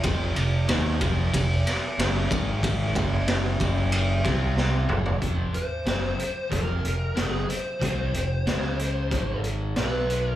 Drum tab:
RD |x-x-x-x-x-x-x-x-|x-x-x-x-x-x-----|----------------|----------------|
HH |----------------|----------------|x-x-x-x-x-x-x-x-|x-x-x-x-x-x-x-x-|
SD |----o-----o-o---|----o-----o-o---|----o-------o---|----o-------o---|
T2 |----------------|--------------o-|----------------|----------------|
FT |----------------|---------------o|----------------|----------------|
BD |o-----o-o-----o-|o-o---o---o-----|o-------o-------|o-------o-------|